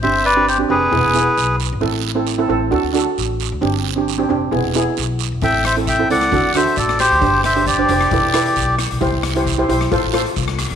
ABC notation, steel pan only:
X:1
M:4/4
L:1/16
Q:1/4=134
K:Am
V:1 name="Steel pan"
[CDG]2 z [CDG] z [CDG] [CDG]2 [B,E^G]2 [B,EG]4 z2 | [CEA]2 z [CEA] z [CEA] [CEA]2 [D^FA]2 [DFA]4 z2 | [CDG]2 z [CDG] z [CDG] [CDG]2 [B,E^G]2 [B,EG]4 z2 | [CEA]2 z [CEA] z [CEA] [CEA]2 [D^FA]2 [DFA]4 z2 |
[DGc]2 z [DGc] z [DGc] [DGc]2 [EAB]2 [EAB]4 z2 | [EGc]2 z [EGc] z [EGc] [EGc]2 [FAc]2 [FAc]4 z2 |]